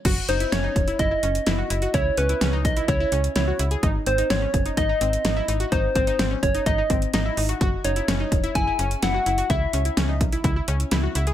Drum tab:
CC |x---------------|----------------|----------------|----------------|
HH |x-xxx-xxx-xxx-xx|x-xxx-xxx-xxx-xx|x-xxx-xxx-xxx-xx|x-xxx-xxx-xxx-ox|
SD |----o-------o---|----o-------o---|----o-------o---|----o-------o---|
BD |o-----o-o-------|o-----o-o-------|o-----o-o-------|o-o---o-o-o-----|

CC |----------------|----------------|
HH |x-xxx-xxx-xxx-xx|x-xxx-xxx-xxx-xx|
SD |----o-------o---|----o-------o---|
BD |o-----o-o-------|o-----o-o-------|